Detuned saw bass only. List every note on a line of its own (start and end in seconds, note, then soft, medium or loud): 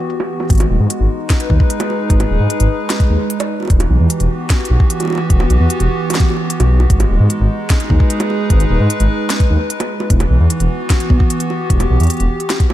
0.50 0.65 G#1 loud
0.70 0.77 D#1 loud
0.80 0.87 G#2 medium
1.00 1.07 G#1 medium
1.50 1.57 D#2 medium
2.10 2.25 G#1 loud
2.30 2.37 D#1 medium
2.40 2.47 G#2 medium
2.60 2.67 G#1 medium
3.10 3.17 D#2 medium
3.70 3.85 E1 loud
3.90 3.97 B1 loud
4.00 4.07 E2 medium
4.20 4.27 E1 medium
4.70 4.77 B1 medium
5.30 5.45 E1 loud
5.50 5.57 B1 loud
5.60 5.67 E2 medium
5.80 5.87 E1 medium
6.60 6.86 B1 medium
6.90 7.05 G#1 medium
7.10 7.17 D#1 loud
7.20 7.27 G#2 medium
7.40 7.47 G#1 medium
7.90 7.97 D#2 medium
8.50 8.65 G#1 loud
8.70 8.77 D#1 loud
8.80 8.87 G#2 medium
9.00 9.07 G#1 medium
9.50 9.57 D#2 medium
10.10 10.25 E1 medium
10.30 10.37 B1 loud
10.40 10.47 E2 medium
10.60 10.67 E1 medium
11.10 11.17 B1 medium
11.70 11.85 E1 loud
11.90 11.97 B1 loud
12.00 12.07 E2 medium
12.20 12.27 E1 medium